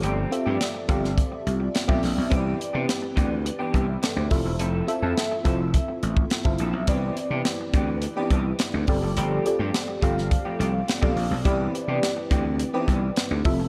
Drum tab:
HH |x-x-x-x-x-x-x-o-|x-x-x-x-x-x-x-o-|x-x-x-x-x-x-x-x-|x-x-x-x-x-x-x-o-|
SD |----o--o----o-o-|----o-------o-o-|----o-------o---|----o-------o---|
BD |------o-o----o--|o-----o---o---o-|------o-o--o-o--|o-----o---o---o-|

HH |x-x-x-x-x-x-x-o-|x-x-x-x-x-x-x-o-|
SD |----o--o----o---|----o-------o---|
BD |------o-o----o--|o-----o---o---o-|